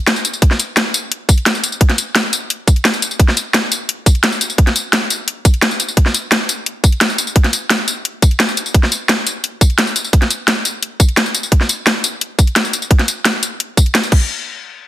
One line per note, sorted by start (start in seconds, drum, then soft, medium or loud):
0.07 snare loud
0.07 closed hi-hat medium
0.16 tambourine soft
0.25 closed hi-hat medium
0.25 tambourine medium
0.33 tambourine soft
0.42 kick loud
0.42 closed hi-hat medium
0.51 snare soft
0.59 closed hi-hat medium
0.59 tambourine medium
0.77 snare loud
0.77 closed hi-hat loud
0.94 closed hi-hat medium
0.94 tambourine medium
1.12 closed hi-hat medium
1.29 kick loud
1.29 closed hi-hat medium
1.29 tambourine medium
1.38 closed hi-hat soft
1.46 snare loud
1.46 closed hi-hat medium
1.55 tambourine soft
1.64 closed hi-hat medium
1.64 tambourine medium
1.72 tambourine soft
1.81 kick loud
1.81 closed hi-hat loud
1.90 snare soft
1.90 closed hi-hat soft
1.98 closed hi-hat medium
1.98 tambourine medium
2.16 snare loud
2.16 closed hi-hat loud
2.33 closed hi-hat medium
2.33 tambourine medium
2.50 closed hi-hat loud
2.67 kick loud
2.67 closed hi-hat medium
2.67 tambourine medium
2.76 closed hi-hat soft
2.85 snare loud
2.85 closed hi-hat medium
2.94 closed hi-hat soft
2.94 tambourine soft
3.02 closed hi-hat medium
3.02 tambourine medium
3.11 tambourine soft
3.20 kick loud
3.20 closed hi-hat loud
3.28 snare soft
3.37 closed hi-hat medium
3.37 tambourine medium
3.54 snare loud
3.54 closed hi-hat loud
3.72 closed hi-hat medium
3.72 tambourine medium
3.89 closed hi-hat loud
4.06 kick loud
4.06 closed hi-hat medium
4.06 tambourine medium
4.15 closed hi-hat soft
4.24 snare loud
4.24 closed hi-hat loud
4.32 tambourine soft
4.41 closed hi-hat medium
4.41 tambourine medium
4.50 tambourine soft
4.58 kick loud
4.58 closed hi-hat loud
4.67 snare soft
4.67 closed hi-hat soft
4.76 closed hi-hat medium
4.76 tambourine medium
4.93 snare loud
4.93 closed hi-hat loud
5.10 closed hi-hat medium
5.10 tambourine medium
5.28 closed hi-hat loud
5.45 kick loud
5.45 closed hi-hat medium
5.45 tambourine medium
5.54 closed hi-hat soft
5.62 snare loud
5.62 closed hi-hat medium
5.71 tambourine soft
5.80 closed hi-hat medium
5.80 tambourine medium
5.88 tambourine soft
5.97 kick loud
5.97 closed hi-hat loud
6.06 snare soft
6.14 closed hi-hat medium
6.14 tambourine medium
6.32 snare loud
6.32 closed hi-hat loud
6.49 closed hi-hat medium
6.49 tambourine medium
6.66 closed hi-hat loud
6.84 kick loud
6.84 closed hi-hat medium
6.84 tambourine medium
6.92 closed hi-hat soft
7.01 snare loud
7.01 closed hi-hat medium
7.10 tambourine soft
7.18 closed hi-hat medium
7.18 tambourine medium
7.27 tambourine soft
7.36 kick loud
7.36 closed hi-hat medium
7.44 snare soft
7.44 closed hi-hat soft
7.53 closed hi-hat medium
7.53 tambourine medium
7.70 snare loud
7.70 closed hi-hat loud
7.88 closed hi-hat medium
7.88 tambourine medium
8.05 closed hi-hat medium
8.22 kick loud
8.22 closed hi-hat medium
8.22 tambourine medium
8.31 closed hi-hat soft
8.40 snare loud
8.40 closed hi-hat medium
8.49 tambourine soft
8.57 closed hi-hat medium
8.57 tambourine medium
8.66 tambourine soft
8.74 kick loud
8.74 closed hi-hat medium
8.83 snare soft
8.92 closed hi-hat medium
8.92 tambourine medium
9.09 snare loud
9.09 closed hi-hat loud
9.27 closed hi-hat medium
9.27 tambourine medium
9.44 closed hi-hat medium
9.61 kick loud
9.61 closed hi-hat medium
9.61 tambourine medium
9.70 closed hi-hat soft
9.79 snare loud
9.79 closed hi-hat medium
9.87 tambourine soft
9.96 closed hi-hat medium
9.96 tambourine medium
10.04 tambourine soft
10.13 kick loud
10.13 closed hi-hat medium
10.22 snare soft
10.22 closed hi-hat soft
10.30 closed hi-hat medium
10.30 tambourine medium
10.48 snare loud
10.48 closed hi-hat medium
10.65 closed hi-hat medium
10.65 tambourine medium
10.83 closed hi-hat medium
11.00 kick loud
11.00 closed hi-hat medium
11.00 tambourine medium
11.09 closed hi-hat soft
11.17 snare loud
11.17 closed hi-hat medium
11.26 tambourine soft
11.35 closed hi-hat medium
11.35 tambourine medium
11.43 tambourine soft
11.52 kick loud
11.52 closed hi-hat medium
11.61 snare soft
11.69 closed hi-hat medium
11.69 tambourine medium
11.87 snare loud
11.87 closed hi-hat loud
12.04 closed hi-hat medium
12.04 tambourine medium
12.21 closed hi-hat medium
12.39 kick loud
12.39 closed hi-hat medium
12.39 tambourine medium
12.47 closed hi-hat soft
12.56 snare loud
12.56 closed hi-hat medium
12.65 tambourine soft
12.73 closed hi-hat medium
12.73 tambourine medium
12.82 tambourine soft
12.91 kick loud
12.91 closed hi-hat medium
12.99 snare soft
12.99 closed hi-hat soft
13.08 closed hi-hat medium
13.08 tambourine medium
13.25 snare loud
13.25 closed hi-hat loud
13.43 closed hi-hat medium
13.43 tambourine medium
13.60 closed hi-hat medium
13.77 kick loud
13.77 closed hi-hat medium
13.77 tambourine medium
13.86 closed hi-hat soft
13.95 snare loud
13.95 closed hi-hat medium
14.03 closed hi-hat soft
14.03 tambourine soft
14.12 kick loud
14.12 crash medium